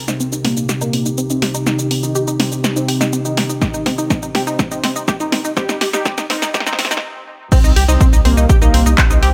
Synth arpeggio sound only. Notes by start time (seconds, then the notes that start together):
0.08 D#4
0.20 C4
0.32 D#4
0.45 C4
0.57 D#4
0.69 G4
0.81 D#4
0.93 C4
1.06 D#4
1.18 C4
1.30 D#4
1.42 G4
1.54 D#4
1.67 C4
1.79 D#4
1.91 C4
2.03 D#4
2.15 G4
2.28 D#4
2.40 C4
2.52 D#4
2.64 C4
2.76 D#4
2.88 G4
3.01 D#4
3.13 C4
3.25 D#4
3.37 C4
3.50 D#4
3.62 G4
3.74 D#4
3.86 C4
3.98 D#4
4.10 C4
4.23 D#4
4.35 G4
4.47 D#4
4.59 C4
4.71 D#4
4.84 C4
4.96 D#4
5.08 G4
5.20 D#4
5.32 C4
5.45 D#4
5.57 C4
5.69 D#4
5.81 G4
5.93 D#4
6.05 C4
6.18 D#4
6.30 C4
6.42 D#4
6.54 G4
6.66 D#4
6.79 C4
6.91 D#4
7.52 C4 C5
7.64 D#4 D#5
7.76 G4 G5
7.88 D#4 D#5
8.01 C4 C5
8.13 D#4 D#5
8.25 C4 C5
8.37 D#4 D#5
8.49 G4 G5
8.62 D#4 D#5
8.74 C4 C5
8.86 D#4 D#5
8.98 C4 C5
9.10 D#4 D#5
9.23 G4 G5